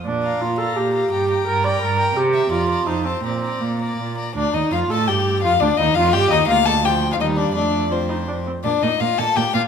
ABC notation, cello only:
X:1
M:3/4
L:1/8
Q:1/4=168
K:Bb
V:1 name="Cello" clef=bass
B,,2 B,,2 B,,2 | G,,2 G,,2 G,,2 | C,2 F,,2 F,,2 | B,,2 B,,2 B,,2 |
D,, E,, F,, A,, G,,2 | F,, D,, E,, F,, G,, E,, | D,,4 E,,2 | F,,4- F,, z |
B,, B,, B,, B,, B,, B,, |]